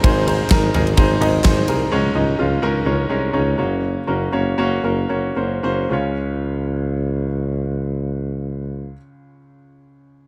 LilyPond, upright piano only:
<<
  \new Staff \with { instrumentName = "Upright piano" } { \time 4/4 \key des \major \tempo 4 = 116 <ees' aes' c''>8 <ees' aes' c''>8 <ees' aes' bes'>8 <ees' aes' bes'>8 <ees' aes' c''>8 <ees' aes' ees''>8 <ees' aes' c''>8 <ees' aes' bes'>8 | <aes des' ees' des''>8 <aes des' ees' ees''>8 <aes des' ees' f'>8 <aes des' ees' bes'>8 <aes des' ees' des''>8 <aes des' ees' des''>8 <aes des' ees' des''>8 <bes des' ges' des''>8~ | <bes des' ges' des''>8 <bes des' ges' bes'>8 <bes des' ges' des''>8 <bes des' ges' des''>8 <bes des' ges' bes'>8 <bes des' ges' des''>8 <bes des' ges' c''>8 <bes des' ges' c''>8 | <aes des' f' des''>1~ |
<aes des' f' des''>1 | }
  \new Staff \with { instrumentName = "Upright piano" } { \clef bass \time 4/4 \key des \major <aes, ees>4. r2 r8 | aes,4. r2 des8~ | des4 r2. | des,1~ |
des,1 | }
>>